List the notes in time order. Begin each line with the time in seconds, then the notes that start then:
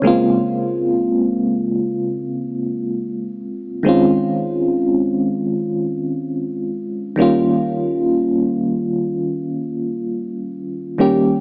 0.02 C#3 G#3 A#3
0.06 C4 F4
3.83 D#3 G#3 C4
3.87 C#4 F4
7.16 D#3 G3 A#3
7.20 C#4 F4
10.98 D#3 G3 A#3 C#4 G4